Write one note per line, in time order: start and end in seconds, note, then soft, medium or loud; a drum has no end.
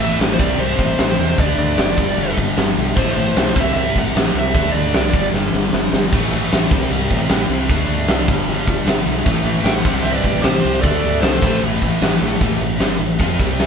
0.00 0.17 A1 loud
0.00 0.38 A2 medium
0.00 0.39 E3 medium
0.00 0.40 A3 loud
0.00 0.17 E5 loud
0.00 crash medium
0.19 0.37 A1 medium
0.19 snare loud
0.19 crash medium
0.33 0.39 C5 medium
0.39 0.57 C2 medium
0.39 1.17 C3 loud
0.39 1.18 G3 loud
0.39 0.60 D5 medium
0.39 kick loud
0.39 crash loud
0.43 1.17 C4 loud
0.59 0.77 C2 loud
0.59 1.35 C5 medium
0.59 crash medium
0.79 0.97 A1 loud
0.79 kick medium
0.79 crash medium
0.98 1.17 A1 loud
0.98 snare loud
0.98 crash medium
1.18 1.36 E2 loud
1.18 1.37 C3 medium
1.18 1.38 G3 medium
1.18 1.37 C4 loud
1.18 crash medium
1.37 1.56 D2 loud
1.37 1.96 D3 medium
1.37 1.97 A3 medium
1.37 1.58 D5 loud
1.37 kick loud
1.37 crash medium
1.42 1.98 D4 loud
1.58 1.76 D2 loud
1.58 2.34 D5 medium
1.58 crash medium
1.77 1.96 F#1 medium
1.77 snare loud
1.77 crash loud
1.97 2.15 G1 loud
1.97 2.75 G2 loud
1.97 2.76 D3 loud
1.97 2.75 G3 loud
1.97 kick loud
1.97 crash medium
2.18 2.35 G1 loud
2.18 crash loud
2.37 2.55 G1 loud
2.37 kick medium
2.37 crash medium
2.57 2.75 G1 medium
2.57 snare loud
2.57 crash medium
2.76 2.95 B1 medium
2.76 2.97 G2 medium
2.76 2.94 D3 medium
2.76 2.95 G3 medium
2.76 crash medium
2.95 3.14 A1 loud
2.95 3.54 A2 loud
2.95 3.55 E3 loud
2.95 3.13 C5 medium
2.95 kick loud
2.95 crash medium
2.99 3.56 A3 loud
3.14 3.34 A1 loud
3.14 3.62 C5 medium
3.14 crash medium
3.36 3.54 B1 medium
3.36 snare loud
3.36 crash medium
3.55 3.74 C2 medium
3.55 4.33 C3 medium
3.55 4.34 G3 loud
3.55 kick loud
3.55 crash loud
3.59 4.32 C4 loud
3.59 3.72 E5 loud
3.73 3.93 C2 loud
3.73 3.98 E5 loud
3.73 crash medium
3.95 4.13 A1 medium
3.95 4.37 F#5 loud
3.95 kick medium
3.95 crash medium
4.15 4.32 A1 medium
4.15 snare loud
4.15 crash medium
4.34 4.52 C2 medium
4.34 4.53 C3 medium
4.34 4.54 G3 medium
4.34 4.53 C4 medium
4.34 crash medium
4.39 4.74 E5 loud
4.54 4.72 D2 loud
4.54 5.12 D3 loud
4.54 5.13 A3 medium
4.54 kick loud
4.54 crash medium
4.58 5.14 D4 loud
4.72 4.92 D2 loud
4.72 5.28 D5 medium
4.72 crash medium
4.94 5.11 C2 loud
4.94 snare loud
4.94 crash medium
5.13 5.31 G1 loud
5.13 5.91 G2 loud
5.13 5.92 D3 loud
5.13 5.91 G3 loud
5.13 kick loud
5.13 crash medium
5.34 5.51 G1 loud
5.34 snare medium
5.53 5.71 G1 loud
5.53 snare medium
5.73 5.91 G1 medium
5.73 snare loud
5.92 6.10 G1 medium
5.92 6.12 G2 medium
5.92 6.12 D3 medium
5.92 6.11 G3 medium
5.92 snare loud
6.12 6.30 A1 loud
6.12 6.70 A2 loud
6.12 6.71 E3 loud
6.12 kick loud
6.12 crash loud
6.12 crash medium
6.16 6.72 A3 loud
6.32 6.49 A1 medium
6.32 crash medium
6.52 6.70 A1 medium
6.52 snare loud
6.52 crash medium
6.71 6.88 C2 loud
6.71 7.48 C3 loud
6.71 7.49 G3 loud
6.71 kick loud
6.71 crash medium
6.76 7.47 C4 loud
6.90 7.08 C2 loud
6.90 crash medium
7.11 7.28 A1 medium
7.11 kick medium
7.11 crash medium
7.29 7.47 A1 loud
7.29 snare loud
7.29 crash medium
7.49 7.67 C2 medium
7.49 7.69 G3 medium
7.49 7.67 C4 loud
7.49 crash medium
7.53 7.68 C3 medium
7.69 7.87 D2 loud
7.69 8.27 D3 medium
7.69 8.28 A3 loud
7.69 kick loud
7.69 crash medium
7.73 8.29 D4 loud
7.88 8.06 D2 loud
7.88 crash medium
8.08 8.26 C2 medium
8.08 snare loud
8.08 crash medium
8.27 8.46 G1 loud
8.27 9.05 G2 loud
8.27 9.06 D3 loud
8.27 kick loud
8.27 crash medium
8.32 9.04 G3 loud
8.48 8.65 G1 loud
8.48 crash medium
8.67 8.85 G1 loud
8.67 kick medium
8.67 crash medium
8.86 9.04 G1 loud
8.86 snare loud
8.86 crash loud
9.05 9.24 B1 loud
9.05 9.25 D3 medium
9.05 9.24 G3 medium
9.05 crash medium
9.09 9.26 G2 medium
9.25 9.43 A1 loud
9.25 9.83 A2 medium
9.25 9.84 E3 loud
9.25 9.85 A3 loud
9.25 kick loud
9.25 crash loud
9.44 9.62 A1 loud
9.44 crash medium
9.64 9.82 A1 loud
9.64 9.75 E5 medium
9.64 9.74 G5 loud
9.64 snare loud
9.64 crash loud
9.74 10.01 C5 loud
9.74 10.03 F#5 loud
9.83 10.03 C2 loud
9.83 10.62 C3 medium
9.83 10.63 G3 loud
9.83 10.62 C4 loud
9.83 kick loud
9.83 crash loud
10.03 10.22 C2 loud
10.03 10.13 C5 medium
10.03 10.14 E5 loud
10.03 crash medium
10.12 10.42 B4 medium
10.12 10.42 D5 loud
10.24 10.42 A1 loud
10.24 kick medium
10.24 crash medium
10.42 10.61 A1 loud
10.42 10.79 G4 medium
10.42 10.82 C5 loud
10.42 snare loud
10.42 crash medium
10.63 10.82 C2 medium
10.63 10.83 C3 medium
10.63 10.83 G3 medium
10.63 10.82 C4 medium
10.63 crash medium
10.81 11.01 D2 loud
10.81 11.41 D3 medium
10.81 11.18 A4 medium
10.81 11.21 D5 loud
10.81 kick loud
10.81 crash medium
10.86 11.42 A3 loud
10.86 11.43 D4 loud
11.03 11.21 D2 loud
11.03 crash medium
11.21 11.41 C2 medium
11.21 11.58 A4 medium
11.21 11.58 C5 medium
11.21 snare loud
11.21 crash medium
11.42 11.60 A1 loud
11.42 12.20 A2 loud
11.42 12.21 E3 medium
11.42 kick loud
11.42 crash medium
11.46 12.19 A3 loud
11.61 11.80 A1 loud
11.61 crash medium
11.82 11.99 A1 loud
11.82 kick medium
11.82 crash medium
12.02 12.19 A1 medium
12.02 snare loud
12.02 crash medium
12.20 12.39 A1 medium
12.20 12.40 E3 medium
12.20 12.39 A3 medium
12.20 snare medium
12.24 12.40 A2 medium
12.41 12.59 A1 loud
12.41 12.60 A2 loud
12.41 12.60 E3 loud
12.41 12.61 A3 loud
12.41 kick loud
12.41 crash medium
12.61 12.79 A1 medium
12.61 12.77 A2 medium
12.61 12.77 E3 medium
12.61 crash medium
12.71 snare soft
12.80 12.98 G1 medium
12.80 12.99 G2 medium
12.80 12.99 D3 loud
12.80 12.99 G3 loud
12.80 snare loud
12.80 crash medium
12.99 13.18 A1 medium
12.99 13.15 A2 medium
12.99 13.15 E3 medium
12.99 crash medium
13.19 13.38 F2 loud
13.19 13.38 F3 medium
13.19 13.38 C4 loud
13.19 13.39 F4 loud
13.19 kick loud
13.19 crash medium
13.39 13.66 C2 loud
13.39 13.66 C3 medium
13.39 13.66 G3 loud
13.39 13.66 C4 loud
13.39 kick loud
13.39 crash medium
13.59 snare loud
13.59 crash medium